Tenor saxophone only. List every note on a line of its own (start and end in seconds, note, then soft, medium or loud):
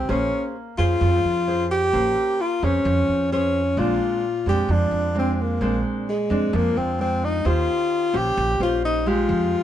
0.10 0.49 C#4 medium
0.78 1.66 F4 medium
1.71 2.42 G4 loud
2.41 2.66 F4 medium
2.64 3.31 C#4 medium
3.32 3.80 C#4 medium
3.79 4.47 F4 medium
4.49 4.73 G4 medium
4.72 5.17 D4 medium
5.19 5.33 C4 medium
5.33 5.43 C4 medium
5.42 5.82 A#3 medium
6.09 6.57 G#3 medium
6.56 6.79 A#3 medium
6.78 7.00 C4 medium
7.01 7.26 C4 medium
7.24 7.49 D#4 medium
7.47 8.18 F4 medium
8.16 8.62 G4 loud
8.63 8.83 F4 medium
8.85 9.09 D#4 medium
9.08 9.63 F4 medium